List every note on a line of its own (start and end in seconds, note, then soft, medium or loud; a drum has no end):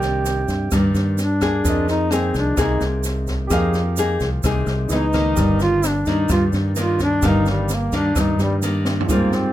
0.00 0.44 C2 medium
0.00 0.69 C3 medium
0.00 0.41 D#3 medium
0.00 0.41 A#3 medium
0.00 0.42 D4 medium
0.00 0.73 G4 medium
0.00 1.60 G4 soft
0.00 1.61 A#4 soft
0.00 1.63 D5 medium
0.00 snare soft
0.00 shaker soft
0.25 snare soft
0.25 shaker medium
0.48 0.70 G2 medium
0.48 kick soft
0.48 snare soft
0.48 shaker soft
0.71 0.94 G2 medium
0.71 1.63 G2 medium
0.71 1.18 D#3 medium
0.71 1.18 A#3 medium
0.71 1.19 D4 medium
0.71 kick medium
0.71 cross-stick medium
0.71 snare soft
0.71 shaker medium
0.94 1.60 G2 medium
0.94 snare soft
0.94 shaker soft
1.18 1.85 D4 medium
1.18 snare soft
1.18 shaker medium
1.41 2.07 A#3 medium
1.41 2.08 G#4 medium
1.41 kick soft
1.41 cross-stick medium
1.41 snare soft
1.41 shaker soft
1.64 2.31 F2 loud
1.64 2.55 F3 medium
1.64 3.47 G#4 soft
1.64 3.48 A#4 soft
1.64 3.49 D#5 medium
1.64 kick medium
1.64 snare soft
1.64 shaker medium
1.88 2.16 D#4 loud
1.88 snare soft
1.88 shaker soft
2.11 2.54 A#3 medium
2.11 2.36 C4 medium
2.11 2.54 D#4 medium
2.11 2.54 G#4 medium
2.11 cross-stick medium
2.11 snare soft
2.11 shaker medium
2.34 2.56 C2 medium
2.34 2.62 D4 medium
2.34 kick soft
2.34 snare soft
2.34 shaker soft
2.57 2.79 C2 medium
2.57 3.48 C3 medium
2.57 3.47 A#3 medium
2.57 3.47 D#4 soft
2.57 2.83 D#4 medium
2.57 3.47 G#4 medium
2.57 kick medium
2.57 cross-stick medium
2.57 snare soft
2.57 shaker medium
2.81 3.47 C2 medium
2.81 snare soft
2.81 shaker soft
3.03 snare soft
3.03 shaker medium
3.27 kick soft
3.27 snare soft
3.27 shaker soft
3.47 4.16 F2 loud
3.47 4.41 F3 medium
3.47 3.81 A#3 medium
3.47 3.81 D#4 medium
3.47 4.86 G4 medium
3.47 4.87 G#4 soft
3.47 kick medium
3.47 cross-stick medium
3.47 snare soft
3.47 shaker medium
3.51 3.81 G#4 medium
3.51 4.88 A#4 medium
3.51 4.89 F5 medium
3.74 snare soft
3.74 shaker soft
3.97 4.27 A#3 medium
3.97 4.28 D#4 medium
3.97 4.28 G#4 medium
3.97 snare soft
3.97 shaker medium
4.20 4.42 C2 medium
4.20 kick soft
4.20 snare soft
4.20 shaker soft
4.43 4.65 C2 medium
4.43 4.88 C3 medium
4.43 4.89 A#3 medium
4.43 4.89 D#4 medium
4.43 4.89 G#4 medium
4.43 kick medium
4.43 cross-stick medium
4.43 snare soft
4.43 shaker medium
4.67 4.88 C2 loud
4.67 snare soft
4.67 shaker soft
4.89 5.33 C#2 medium
4.89 5.04 E3 medium
4.89 5.05 B3 medium
4.89 5.36 D#4 soft
4.89 5.05 D#4 medium
4.89 5.36 G#4 soft
4.89 5.37 B4 soft
4.89 5.37 D#5 medium
4.89 snare soft
4.89 shaker medium
4.93 5.58 D#4 medium
5.13 5.80 D#3 medium
5.13 5.80 A#3 medium
5.13 kick soft
5.13 cross-stick medium
5.13 snare soft
5.13 shaker soft
5.35 6.03 G1 loud
5.35 6.28 G2 medium
5.35 7.18 G4 soft
5.35 7.19 A#4 soft
5.35 kick medium
5.35 snare soft
5.35 shaker medium
5.40 7.21 D5 medium
5.60 5.89 F4 loud
5.60 snare soft
5.60 shaker soft
5.83 cross-stick medium
5.83 snare soft
5.83 shaker medium
5.87 6.10 D4 medium
6.06 6.28 G2 medium
6.06 6.73 D#3 medium
6.06 6.73 A#3 medium
6.06 6.73 D4 medium
6.06 6.31 D#4 medium
6.06 kick soft
6.06 snare soft
6.06 shaker soft
6.29 6.51 G2 medium
6.29 7.21 G2 medium
6.29 6.45 F4 medium
6.29 kick medium
6.29 cross-stick medium
6.29 snare soft
6.29 shaker medium
6.53 7.19 G2 medium
6.53 snare soft
6.53 shaker soft
6.76 7.19 D#3 medium
6.76 7.19 A#3 medium
6.76 7.19 D4 medium
6.76 snare soft
6.76 shaker medium
6.80 7.00 F4 medium
6.99 7.29 D4 loud
6.99 kick soft
6.99 snare soft
6.99 shaker soft
7.22 7.88 G1 loud
7.22 8.14 G2 medium
7.22 7.69 D#3 medium
7.22 7.69 A#3 soft
7.22 7.70 D4 medium
7.22 9.05 G4 soft
7.22 9.05 A#4 soft
7.22 9.06 F5 medium
7.22 kick medium
7.22 cross-stick medium
7.22 snare soft
7.22 shaker medium
7.27 7.48 D#4 loud
7.46 snare soft
7.46 shaker soft
7.50 7.76 G3 medium
7.69 snare soft
7.69 shaker medium
7.74 7.95 A#3 medium
7.92 8.14 G2 medium
7.92 8.59 D#3 medium
7.92 8.59 A#3 medium
7.92 8.59 D4 medium
7.92 8.22 D4 medium
7.92 kick soft
7.92 snare soft
7.92 shaker soft
8.16 9.06 G2 medium
8.16 8.37 G2 medium
8.16 kick medium
8.16 cross-stick medium
8.16 snare soft
8.16 shaker medium
8.20 8.41 D#4 medium
8.39 9.05 G2 loud
8.39 snare soft
8.39 shaker soft
8.43 8.56 G3 medium
8.62 9.05 D#3 medium
8.62 9.06 A#3 medium
8.62 9.06 D4 medium
8.62 snare soft
8.62 shaker medium
8.85 snare soft
8.85 shaker soft
9.00 floor tom medium
9.06 9.53 G#2 loud
9.06 9.53 G#2 medium
9.06 9.52 G3 medium
9.06 9.52 C4 medium
9.06 9.53 F4 soft
9.06 9.53 G4 soft
9.06 kick medium
9.06 snare soft
9.06 shaker medium
9.10 9.37 A#3 medium
9.10 9.52 F4 medium
9.10 9.53 A#4 soft
9.10 9.53 C5 medium
9.32 9.53 C4 medium
9.32 snare soft
9.32 shaker soft